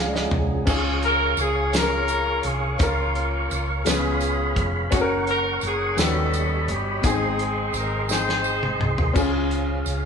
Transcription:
Already playing: C#2 F3 G#3 C#4 F4 G#4 C#5 F5 F#5 G#5 A#5
0.07 D5
0.14 D#5, snare
0.31 C2, floor tom
0.65 C#2 C#3 C#4 D#4 G#4 C#5 F5 C#6, kick, crash, tambourine
0.74 F4
1.03 A#4, closed hi-hat
1.37 C#2 G#4, closed hi-hat, tambourine
1.73 C#4 F4 G#4 A#4, snare, closed hi-hat, tambourine
1.83 A#4
2.08 closed hi-hat, tambourine
2.43 C2 G#4, closed hi-hat
2.79 C#2 C#3 A#3 C#4 F4 A#4, kick, closed hi-hat, tambourine
2.83 C#4
3.15 closed hi-hat
3.51 C#2 F4, closed hi-hat, tambourine
3.85 C#2 C#3 G#3 B3 C#4 F4 G#4 B4 C#5 B5, snare, closed hi-hat, tambourine
4.21 closed hi-hat, tambourine
4.56 F1, kick, closed hi-hat
4.91 F#1 C#4 F#4 G#4 A#4 F#5 C#6, kick, closed hi-hat, tambourine
5.01 A#4
5.27 A#4, closed hi-hat
5.61 F#1, closed hi-hat, tambourine
5.66 G#4
5.96 D#2 D#3 F#3 G3 C#4 D#4 F#4 A4 B4 D#5 B5, snare, closed hi-hat, tambourine
6.03 G3
6.34 closed hi-hat, tambourine
6.68 G1 G4, closed hi-hat
7.02 G#1 G#2 B3 D#4 G#4 C5, kick, closed hi-hat, tambourine
7.06 C4 G#4 C6
7.39 G#4, closed hi-hat
7.73 G#1 A#4, closed hi-hat, tambourine
8.09 C4 D#4 G#4 C5, snare, tambourine
8.29 snare
8.44 tambourine
8.63 mid tom
8.80 C2, mid tom
8.98 floor tom
9.13 C#2 C#3 C#4 F4 G#4 F5, kick, tambourine, crash
9.51 closed hi-hat
9.86 C#2, closed hi-hat, tambourine

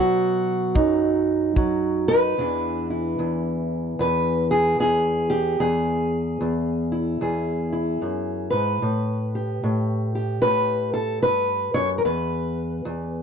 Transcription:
Already playing: B2 F#3 F#4
0.75 F#2 D#4, kick
1.56 F#3, kick
2.08 D#4 B4
2.38 E2 E3 D4 E4
2.90 E4
3.19 E2
3.99 E2 B4
4.51 G#4
4.79 E2 G#4
5.30 G4
5.60 E2 G#4
6.41 E2
6.92 E4
7.21 E2 G#4
7.72 E4
8.02 F#2
8.50 G#2 B4
8.82 A2
9.35 G4
9.63 A2
10.15 G4
10.42 A2 B4
10.94 A4
11.23 G2 B4
11.74 F#2 C#5
11.98 A#4
12.05 E2 B4
12.85 E2

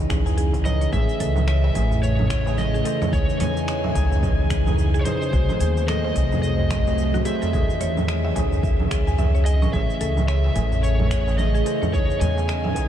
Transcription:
Already playing: C#3 E3 C#4 D#4 G#4 D#5
0.10 C#2 G#4, finger snap, kick, darbuka tek, low conga, cabasa
0.25 E3 C#4 D#4 G#4 G#5, open hi-hat, darbuka dum, cabasa
0.37 G#4, open hi-hat, cabasa
0.53 kick, open hi-hat, darbuka tek, cabasa
0.64 E3 C#4 D#4 G#4 C#5 D#5, darbuka ka, darbuka tek, low conga, cabasa
0.81 C#5, open hi-hat, cabasa
0.90 A1 C#3 E3 A3 C#4 G#4 E5, kick, low conga, cabasa
0.94 G#4
1.09 cabasa
1.20 C#2 A4, open hi-hat, cabasa
1.36 darbuka ka, low conga, cabasa
1.48 C#5 E5, finger snap, cabasa
1.64 E5, darbuka ka
1.73 A1 E3 A3 C#4 G#4 G#5, kick, open hi-hat, low conga, cabasa
1.91 darbuka ka, darbuka dum, cabasa
2.03 C#5, cabasa
2.19 low conga, darbuka dum
2.30 finger snap, kick, open hi-hat, darbuka ka, cabasa
2.45 E3 A3 C#4 G#4, darbuka tek, cabasa
2.58 D#5, low conga, cabasa
2.74 G#4, cabasa
2.84 E3 A3 C#4 A4 C5, open hi-hat, darbuka ka, cabasa
3.02 C#5, darbuka tek, darbuka dum, low conga, cabasa
3.10 C#2 C#3 E3 C#4 D#4 G#4 C#5, kick, cabasa
3.15 G#4
3.29 cabasa
3.40 E2 C#5 G#5, open hi-hat, low conga, cabasa
3.57 darbuka ka, cabasa
3.68 D#5, finger snap, cabasa
3.84 E5, darbuka ka, low conga
3.93 C#2 E3 C#4 D#4 G#4 G#5, kick, open hi-hat, darbuka tek, cabasa
4.11 darbuka ka, darbuka dum, cabasa
4.23 kick, low conga, cabasa
4.39 darbuka ka
4.50 finger snap, kick, open hi-hat, darbuka tek, cabasa
4.65 E3 C#4 D#4 G#4, low conga, darbuka dum, cabasa
4.78 cabasa
4.94 G#4, darbuka tek, cabasa
5.01 E3 C#5
5.05 C#4 D#4 G#4 C5 C#5, open hi-hat, darbuka ka, low conga, cabasa
5.22 D#5, cabasa
5.30 C2 C3 F#3 A3 C4 F#4 G#4, kick, cabasa
5.49 low conga, cabasa
5.60 D#2 G#4, open hi-hat, cabasa
5.77 darbuka ka, cabasa
5.88 A4 D#5, finger snap, low conga, cabasa
6.04 C5, darbuka ka
6.13 C2 F#3 A3 C4 G#4 D#5, kick, open hi-hat, cabasa
6.32 darbuka ka, low conga, darbuka dum, cabasa
6.42 D#5, cabasa
6.60 darbuka dum
6.71 finger snap, kick, open hi-hat, darbuka ka, low conga, cabasa
6.86 F#3 A3 C4 G#4, darbuka tek, cabasa
6.98 cabasa
7.14 F#4, low conga, cabasa
7.25 F#3 A3 C4 G#4 C5 E5, open hi-hat, darbuka ka, cabasa
7.42 A4, darbuka tek, darbuka dum, cabasa
7.51 C#2 C#3 D#3 E3 C#4 G#4, kick, low conga, cabasa
7.70 cabasa
7.80 E2 C#5, open hi-hat, cabasa
7.97 darbuka ka, low conga, cabasa
8.08 D#5, finger snap, cabasa
8.25 E5, darbuka ka
8.34 C#2 D#3 E3 C#4 G#4 G#5, kick, open hi-hat, darbuka tek, low conga, cabasa
8.52 darbuka ka, darbuka dum, cabasa
8.63 kick, cabasa
8.80 darbuka ka, low conga
8.91 C#2 G#4, finger snap, kick, open hi-hat, darbuka tek, cabasa
9.07 G#5, darbuka dum, cabasa
9.18 E5, low conga, cabasa
9.35 C#5, darbuka tek, cabasa
9.45 D#5 G#5, open hi-hat, darbuka ka, cabasa
9.62 C#6, low conga, cabasa
9.71 A1 C#3 E3 A3 C#4 G#4 E5, kick, low conga, cabasa
9.75 G#4
9.90 cabasa
10.01 C#2 A4, open hi-hat, cabasa
10.17 darbuka ka, low conga, cabasa
10.28 C#5 E5, finger snap, cabasa
10.44 E5, darbuka ka
10.54 A1 E3 A3 C#4 G#5, kick, open hi-hat, low conga, cabasa
10.58 G#4
10.72 darbuka ka, darbuka dum, cabasa
10.83 C#5, cabasa
10.99 darbuka dum, low conga
11.11 finger snap, kick, open hi-hat, darbuka ka, cabasa
11.26 E3 A3 C#4 G#4, darbuka tek, cabasa
11.38 D#5, low conga, cabasa
11.54 G#4, cabasa
11.64 E3 A3 C#4 A4 C5, open hi-hat, darbuka ka, cabasa
11.82 C#5, darbuka tek, darbuka dum, low conga, cabasa
11.91 C#2 E3 C#4 D#4 G#4 C#5, kick, cabasa
11.95 G#4
12.10 cabasa
12.20 E2 C#5 G#5, open hi-hat, low conga, cabasa
12.37 darbuka ka, cabasa
12.48 D#5, finger snap, cabasa
12.64 E5, darbuka ka, low conga
12.74 C#2 E3 C#4 D#4 G#5, kick, open hi-hat, darbuka tek, cabasa
12.78 G#4

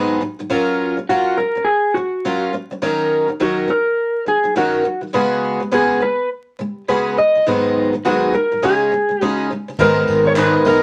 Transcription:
Already playing: G#2 D#3 F#3 B3 D#4 G#4
0.21 G#2 D#3 F#3
0.39 G#2 D#3 F#3
0.50 F#3 C#4 F4 A#4
0.97 F#3 C#4
1.09 F#3 C#4 F4 F#4 A#4
1.38 F#3 C#4 A#4
1.55 F#3 C#4
1.65 G#4
1.94 F#3 C#4 F#4
2.25 F#3 C#4 F4 A#4
2.53 F#3 C#4
2.71 F#3 C#4
2.82 D#3 F#3 C#4 D#4 A#4
3.28 D#3 F#3
3.40 D#3 F#3 C#4 D#4 F#4 A#4
3.68 D#3 F#3 A#4
4.26 D#3 F#3 G#4
4.44 D#3 F#3
4.56 D#3 F#3 C#4 D#4 F#4 A#4
4.84 D#3 F#3
5.01 D#3 F#3
5.13 C#3 G#3 B3 F#4 G#4
5.60 C#3 G#3
5.71 C#3 G#3 B3 F#4 G#4
6.00 C#3 G#3 B4
6.59 C#3 G#3
6.88 C#3 G#3 B3 F#4 G#4 B4
7.17 C#3 G#3 D#5
7.35 C#3 G#3
7.46 G#2 D#3 F#3 B3 D#4 G#4
7.93 G#2 D#3 F#3
8.05 G#2 D#3 F#3 B3 D#4 F#4 G#4
8.34 G#2 D#3 F#3 A#4
8.52 G#2 D#3 F#3
8.62 C#3 G#3 C#4 D#4 G#4
8.92 C#3 G#3
9.09 C#3 G#3
9.21 C#3 G#3 C#4 D#4 F#4 G#4
9.50 C#3 G#3
9.68 C#3 G#3
9.79 G#1 G#2 D#3 G#3 B3 D#4 A#4, kick, crash
10.08 G#1, tambourine
10.27 C#5
10.36 G#2 D#3 G#3 B3 D#4 A#4 B4, clap
10.65 B1 G#3 B3 D#4 A#4 D#5, tambourine

